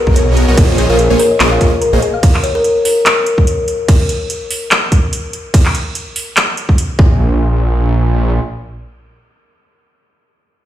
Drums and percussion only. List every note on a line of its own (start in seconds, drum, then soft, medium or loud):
0.07 kick medium
0.16 closed hi-hat medium
0.37 closed hi-hat medium
0.57 kick loud
0.57 closed hi-hat medium
0.57 crash medium
0.78 closed hi-hat medium
0.99 closed hi-hat medium
1.19 open hi-hat loud
1.40 clap loud
1.40 closed hi-hat medium
1.61 kick medium
1.61 closed hi-hat medium
1.82 closed hi-hat medium
2.02 closed hi-hat medium
2.23 kick loud
2.23 closed hi-hat medium
2.23 crash medium
2.35 clap soft
2.44 closed hi-hat medium
2.64 closed hi-hat medium
2.85 open hi-hat loud
3.06 clap loud
3.06 closed hi-hat medium
3.26 closed hi-hat medium
3.38 kick medium
3.47 closed hi-hat medium
3.68 closed hi-hat medium
3.88 kick loud
3.88 closed hi-hat medium
3.88 crash medium
4.09 closed hi-hat medium
4.30 closed hi-hat medium
4.51 open hi-hat loud
4.71 clap loud
4.71 closed hi-hat medium
4.92 kick medium
4.92 closed hi-hat medium
5.13 closed hi-hat medium
5.33 closed hi-hat medium
5.54 kick loud
5.54 closed hi-hat medium
5.54 crash medium
5.66 clap soft
5.75 closed hi-hat medium
5.95 closed hi-hat medium
6.16 open hi-hat loud
6.37 clap loud
6.37 closed hi-hat medium
6.57 closed hi-hat medium
6.69 kick medium
6.78 closed hi-hat medium
6.99 kick loud